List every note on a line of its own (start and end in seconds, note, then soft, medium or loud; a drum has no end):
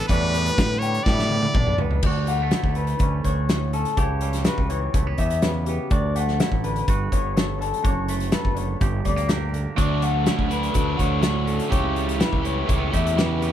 0.00 0.58 D3 medium
0.00 0.11 D4 medium
0.08 0.49 E2 loud
0.08 0.58 A2 medium
0.08 0.82 G3 medium
0.08 0.34 B3 medium
0.08 1.56 D4 medium
0.08 0.80 B4 loud
0.08 0.34 D5 medium
0.08 kick loud
0.08 closed hi-hat medium
0.34 1.07 B3 medium
0.34 0.82 B4 medium
0.34 closed hi-hat medium
0.46 closed hi-hat medium
0.58 0.98 A2 medium
0.58 2.76 D3 medium
0.58 kick loud
0.58 snare loud
0.58 closed hi-hat medium
0.72 snare soft
0.79 1.05 C#5 medium
0.79 1.07 G5 medium
0.79 closed hi-hat medium
0.85 2.05 G3 medium
0.94 closed hi-hat medium
1.03 1.46 A2 loud
1.03 1.77 D5 medium
1.03 1.55 E5 medium
1.03 kick loud
1.03 snare medium
1.08 1.80 B3 medium
1.19 snare medium
1.29 2.00 E2 medium
1.29 high tom medium
1.42 high tom medium
1.54 1.76 B1 medium
1.54 2.06 D4 medium
1.54 1.79 D5 medium
1.54 kick loud
1.54 mid tom medium
1.67 mid tom medium
1.78 2.00 C#2 medium
1.78 2.01 B3 medium
1.78 2.03 B4 medium
1.78 floor tom loud
1.91 floor tom medium
2.03 2.52 D2 medium
2.03 3.98 D2 medium
2.03 2.53 F#4 medium
2.03 2.28 D5 medium
2.03 kick loud
2.03 crash medium
2.27 2.42 G3 medium
2.27 2.76 F#5 medium
2.27 closed hi-hat medium
2.42 3.98 A3 soft
2.51 3.26 E4 medium
2.51 snare loud
2.51 closed hi-hat medium
2.63 2.93 D2 medium
2.63 kick medium
2.75 3.98 D3 medium
2.75 3.24 B4 medium
2.75 closed hi-hat soft
2.87 closed hi-hat medium
2.99 3.20 D2 medium
2.99 3.73 C#4 medium
2.99 kick loud
2.99 closed hi-hat medium
3.24 3.84 D2 medium
3.24 3.95 F#4 medium
3.24 3.73 C#5 medium
3.24 kick medium
3.24 closed hi-hat soft
3.49 3.96 A2 medium
3.49 snare loud
3.49 closed hi-hat medium
3.73 4.00 C#4 medium
3.73 3.98 A4 medium
3.73 closed hi-hat medium
3.85 closed hi-hat medium
3.97 4.47 C#2 medium
3.97 4.70 C#3 medium
3.97 4.45 G4 medium
3.97 4.46 C#5 medium
3.97 kick loud
3.97 closed hi-hat medium
4.21 5.91 G3 medium
4.21 closed hi-hat medium
4.33 snare soft
4.33 closed hi-hat medium
4.44 5.18 F#4 medium
4.44 4.69 B4 medium
4.44 snare loud
4.44 closed hi-hat medium
4.58 4.87 C#2 medium
4.58 kick medium
4.70 5.88 E3 medium
4.70 5.18 C#5 medium
4.70 closed hi-hat medium
4.94 5.14 C#2 loud
4.94 5.07 A3 medium
4.94 kick loud
4.94 closed hi-hat medium
5.07 5.67 B3 soft
5.18 5.77 E2 medium
5.18 5.88 G4 soft
5.18 5.42 E5 medium
5.18 kick medium
5.18 closed hi-hat medium
5.30 closed hi-hat medium
5.42 5.88 C#3 medium
5.42 5.66 B4 medium
5.42 snare loud
5.42 closed hi-hat medium
5.66 5.89 B3 medium
5.66 5.91 G4 medium
5.66 closed hi-hat medium
5.90 6.40 D2 medium
5.90 6.88 D2 medium
5.90 6.40 F#4 medium
5.90 6.16 D5 medium
5.90 kick loud
5.90 closed hi-hat medium
6.16 6.85 A3 medium
6.16 6.64 F#5 medium
6.16 closed hi-hat medium
6.28 snare soft
6.40 6.86 E4 medium
6.40 snare loud
6.40 closed hi-hat medium
6.52 6.81 A1 medium
6.52 kick medium
6.64 7.58 D3 medium
6.64 7.12 B4 medium
6.64 closed hi-hat medium
6.76 closed hi-hat soft
6.88 7.08 G1 medium
6.88 7.82 G2 medium
6.88 7.36 F#4 medium
6.88 kick loud
6.88 closed hi-hat medium
7.12 7.72 G1 medium
7.12 7.82 B3 soft
7.12 7.61 C#5 medium
7.12 kick medium
7.12 closed hi-hat medium
7.37 7.82 A4 medium
7.37 snare loud
7.37 closed hi-hat medium
7.59 8.53 D3 medium
7.59 7.85 A4 medium
7.59 closed hi-hat medium
7.74 closed hi-hat medium
7.83 8.34 F#1 medium
7.83 8.78 F#2 medium
7.83 8.33 F#4 medium
7.83 8.32 C#5 medium
7.83 kick loud
7.83 closed hi-hat medium
8.08 8.79 A3 medium
8.08 closed hi-hat medium
8.20 closed hi-hat medium
8.32 8.79 A4 medium
8.32 8.56 B4 medium
8.32 snare loud
8.32 closed hi-hat medium
8.45 8.75 F#1 medium
8.45 kick medium
8.54 9.52 D3 medium
8.54 9.05 C#5 medium
8.54 closed hi-hat medium
8.81 9.01 G1 loud
8.81 9.75 G2 medium
8.81 9.27 G4 medium
8.81 kick loud
8.81 closed hi-hat medium
9.04 9.65 D2 medium
9.04 9.16 G3 medium
9.04 9.29 D5 medium
9.04 kick medium
9.04 closed hi-hat medium
9.16 9.78 A#3 soft
9.16 closed hi-hat medium
9.28 9.75 G4 medium
9.28 9.54 A#4 medium
9.28 snare loud
9.28 closed hi-hat medium
9.53 10.49 D3 medium
9.53 9.77 G4 medium
9.53 closed hi-hat medium
9.75 11.71 D2 medium
9.75 10.27 D2 medium
9.75 10.50 D3 medium
9.75 10.24 F#3 medium
9.75 10.26 A3 medium
9.75 10.25 D4 loud
9.75 10.26 F#4 medium
9.75 10.02 D5 medium
9.75 kick loud
9.75 closed hi-hat medium
9.80 10.26 F#4 medium
10.02 11.74 A3 medium
10.02 10.51 F#5 medium
10.02 closed hi-hat medium
10.25 10.72 F#3 medium
10.25 10.51 A3 medium
10.25 10.49 D4 medium
10.25 10.99 E4 medium
10.25 10.48 F#4 medium
10.25 snare loud
10.25 closed hi-hat medium
10.39 10.69 D2 medium
10.39 kick medium
10.49 11.72 D3 medium
10.49 10.73 A3 medium
10.49 10.74 D4 medium
10.49 10.75 F#4 medium
10.49 10.99 B4 medium
10.49 closed hi-hat medium
10.63 closed hi-hat medium
10.74 10.95 D2 medium
10.74 11.21 F#3 medium
10.74 10.99 A3 medium
10.74 10.98 D4 medium
10.74 10.96 F#4 medium
10.74 kick medium
10.74 closed hi-hat medium
10.97 11.59 D2 medium
10.97 11.22 A3 soft
10.97 11.21 D4 medium
10.97 11.22 F#4 medium
10.97 11.69 F#4 medium
10.97 11.48 C#5 medium
10.97 kick medium
10.97 closed hi-hat medium
11.21 11.69 A2 medium
11.21 11.68 D3 medium
11.21 11.69 F#3 medium
11.21 11.70 A3 medium
11.21 11.70 D4 medium
11.21 11.70 F#4 medium
11.21 snare loud
11.21 closed hi-hat medium
11.46 11.74 C#4 medium
11.46 11.72 A4 medium
11.46 closed hi-hat medium
11.59 closed hi-hat medium
11.69 12.21 C#2 medium
11.69 12.43 C#3 medium
11.69 12.17 E3 medium
11.69 12.18 A3 medium
11.69 12.18 E4 loud
11.69 12.20 G4 medium
11.69 12.19 G4 loud
11.69 12.20 C#5 medium
11.69 kick loud
11.69 closed hi-hat medium
11.96 13.52 G3 medium
11.96 closed hi-hat medium
12.09 closed hi-hat medium
12.18 12.64 E3 medium
12.18 12.44 A3 medium
12.18 12.42 E4 medium
12.18 12.41 G4 medium
12.18 12.45 B4 medium
12.18 snare loud
12.18 closed hi-hat medium
12.33 12.62 C#2 medium
12.33 kick medium
12.42 13.52 E3 medium
12.42 12.66 A3 medium
12.42 12.66 E4 medium
12.42 12.67 G4 medium
12.42 12.94 C#5 medium
12.42 closed hi-hat medium
12.65 12.89 C#2 loud
12.65 13.15 E3 medium
12.65 12.79 A3 medium
12.65 12.92 A3 medium
12.65 12.90 E4 medium
12.65 12.89 G4 medium
12.65 kick loud
12.65 closed hi-hat medium
12.79 13.40 B3 medium
12.90 13.52 E2 medium
12.90 13.16 A3 medium
12.90 13.16 E4 medium
12.90 13.16 G4 medium
12.90 13.52 G4 medium
12.90 13.18 E5 medium
12.90 kick medium
12.90 closed hi-hat medium
13.07 closed hi-hat medium
13.16 13.52 C#3 medium
13.16 13.52 E3 medium
13.16 13.52 A3 medium
13.16 13.52 E4 medium
13.16 13.52 G4 medium
13.16 13.42 B4 medium
13.16 snare loud
13.16 closed hi-hat medium
13.42 13.52 B3 medium
13.42 13.52 G4 medium
13.42 closed hi-hat medium